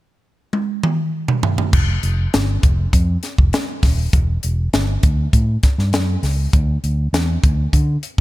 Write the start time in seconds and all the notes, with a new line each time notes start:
0.53 high tom
0.83 mid tom
1.28 mid tom
1.43 floor tom
1.58 floor tom
1.73 F1, kick, crash
2.03 F1, closed hi-hat
2.34 G1, snare, closed hi-hat
2.63 F1, kick, closed hi-hat
2.93 F2, kick, closed hi-hat
3.23 snare, closed hi-hat
3.38 F1, kick
3.53 snare, closed hi-hat
3.83 D#1, kick, snare, open hi-hat
4.13 E1, kick, closed hi-hat
4.43 E1, closed hi-hat
4.73 G1, snare, closed hi-hat
5.03 D2, kick, closed hi-hat
5.33 A2, kick, closed hi-hat
5.63 kick, snare, closed hi-hat
5.78 G2, snare
5.93 F#2, snare, closed hi-hat
6.23 C#2, snare, open hi-hat
6.53 D2, kick, closed hi-hat
6.84 D2, closed hi-hat
7.13 E2, snare, closed hi-hat
7.44 D2, kick, closed hi-hat
7.73 D3, kick, closed hi-hat
8.03 closed hi-hat